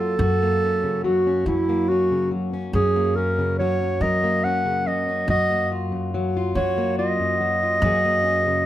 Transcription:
0.00 0.19 F#2 medium
0.00 0.15 F#3 medium
0.00 1.04 F#3 medium
0.00 0.42 A#3 soft
0.00 0.14 F4 soft
0.00 0.20 F#4 medium
0.00 1.00 A4 medium
0.19 1.42 F#2 medium
0.19 1.47 F#2 medium
0.19 4.01 F#4 medium
0.42 1.69 A#3 medium
0.64 1.26 C#4 medium
0.84 1.05 C#3 medium
1.04 2.31 F#3 medium
1.04 1.45 F#4 medium
1.27 1.48 C#4 medium
1.46 2.74 F#2 medium
1.46 2.69 F#3 medium
1.46 1.90 C#4 medium
1.46 1.90 E4 medium
1.69 2.96 A#3 medium
1.89 2.52 C#4 medium
1.89 2.30 F#4 medium
2.12 2.32 C#3 medium
2.31 3.60 F#3 medium
2.53 2.74 C#4 medium
2.73 3.97 F#2 medium
2.73 4.02 F#2 medium
2.73 3.16 C#4 medium
2.73 3.17 G#4 medium
2.96 4.23 A#3 soft
3.16 3.80 C#4 medium
3.16 3.57 A#4 medium
3.39 3.59 C#3 medium
3.59 4.87 F#3 medium
3.59 4.03 C#5 medium
3.82 4.44 C#4 medium
4.01 5.29 F#2 medium
4.01 5.24 F#3 medium
4.01 5.30 A#4 medium
4.01 4.45 D#5 medium
4.24 5.50 A#3 medium
4.44 5.07 C#4 medium
4.44 4.89 F#5 medium
4.65 4.86 C#3 medium
4.87 6.14 F#3 medium
4.87 5.28 D#5 medium
5.08 5.29 C#4 medium
5.28 6.51 F#2 medium
5.28 5.91 F#2 medium
5.28 6.56 F#4 medium
5.28 5.70 D#5 loud
5.50 6.77 A#3 medium
5.72 6.35 F4 medium
5.92 6.55 F#2 medium
6.14 7.40 F#3 medium
6.37 6.98 F4 medium
6.55 7.19 F#2 medium
6.55 7.78 F#3 medium
6.55 7.86 F#4 medium
6.55 6.97 C#5 medium
6.78 7.84 A#3 medium
6.98 7.62 F4 medium
6.98 8.66 D#5 loud
7.19 7.83 F#2 medium
7.41 7.83 F#3 medium
7.63 7.78 F4 medium
7.82 8.66 F#2 medium
7.82 8.66 F#3 medium
7.82 8.04 A#3 medium
7.82 8.25 C#4 medium
7.86 8.66 G#4 medium
8.05 8.66 A#3 medium
8.26 8.66 C#4 medium
8.47 8.66 C#3 medium

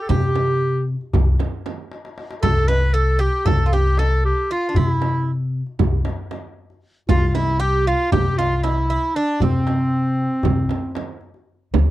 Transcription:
0.02 0.10 A4 medium
0.09 0.93 C3 medium
0.09 0.87 G4 medium
0.09 0.83 G4 medium
0.09 darbuka dum medium
0.09 frame drum medium
0.36 darbuka tek medium
0.36 frame drum medium
0.62 darbuka ka soft
0.88 darbuka ka soft
1.01 darbuka ka soft
1.13 1.34 C2 medium
1.13 darbuka dum medium
1.13 frame drum medium
1.40 darbuka tek medium
1.40 frame drum medium
1.66 darbuka tek medium
1.66 frame drum medium
1.92 darbuka tek medium
2.05 darbuka ka medium
2.18 darbuka tek medium
2.31 darbuka ka medium
2.42 3.27 C2 medium
2.42 2.70 A4 loud
2.42 2.68 A4 medium
2.42 darbuka dum medium
2.42 frame drum medium
2.68 2.93 B4 medium
2.68 2.96 B4 medium
2.68 darbuka tek medium
2.68 frame drum medium
2.94 3.18 A4 medium
2.94 3.22 A4 medium
3.19 3.45 G4 medium
3.19 3.48 G4 medium
3.33 darbuka ka soft
3.46 4.30 C2 medium
3.46 3.66 A4 medium
3.46 darbuka dum medium
3.46 frame drum medium
3.66 3.72 F4 soft
3.66 3.74 A4 medium
3.73 3.98 G4 medium
3.73 4.00 G4 medium
3.73 frame drum medium
3.97 4.24 A4 medium
3.97 4.50 A4 medium
3.97 darbuka tek medium
3.97 frame drum medium
4.25 4.53 G4 medium
4.37 darbuka ka soft
4.51 4.68 F4 medium
4.51 4.78 F4 medium
4.69 4.76 D4 soft
4.75 5.59 C3 medium
4.75 5.30 E4 medium
4.75 4.89 F4 medium
4.75 darbuka dum medium
4.75 frame drum medium
4.89 5.35 E4 medium
5.02 darbuka tek medium
5.02 frame drum medium
5.66 darbuka ka soft
5.79 6.00 C2 medium
5.79 frame drum medium
5.79 darbuka dum medium
6.05 darbuka tek medium
6.05 frame drum medium
6.31 darbuka tek medium
6.31 frame drum medium
6.70 darbuka ka soft
7.09 7.92 C2 medium
7.09 7.28 F4 medium
7.09 7.35 F4 medium
7.09 frame drum medium
7.09 darbuka dum medium
7.28 7.37 F4 medium
7.35 7.59 E4 medium
7.35 7.62 E4 medium
7.35 darbuka tek medium
7.35 frame drum medium
7.60 7.87 G4 medium
7.60 7.89 G4 medium
7.87 8.12 F4 medium
8.00 darbuka ka soft
8.12 8.95 C2 medium
8.12 8.38 G4 medium
8.12 8.39 G4 medium
8.12 darbuka dum medium
8.12 frame drum loud
8.38 8.57 F4 medium
8.38 8.63 F4 medium
8.38 darbuka tek medium
8.38 frame drum medium
8.57 8.65 F4 medium
8.63 8.89 E4 medium
8.63 9.17 E4 medium
8.63 darbuka tek medium
8.63 frame drum medium
8.90 9.16 E4 medium
9.16 9.41 D4 medium
9.16 9.42 D4 medium
9.40 10.25 C3 medium
9.40 11.18 C4 medium
9.40 11.19 C4 medium
9.40 darbuka dum medium
9.40 frame drum medium
9.67 darbuka tek medium
9.67 frame drum medium
10.19 darbuka ka soft
10.31 darbuka ka soft
10.43 10.65 C2 medium
10.43 darbuka dum medium
10.43 frame drum medium
10.69 darbuka tek medium
10.69 frame drum medium
10.95 darbuka tek medium
10.95 frame drum medium
11.21 darbuka ka soft
11.34 darbuka ka soft
11.74 11.90 D2 medium
11.74 frame drum loud

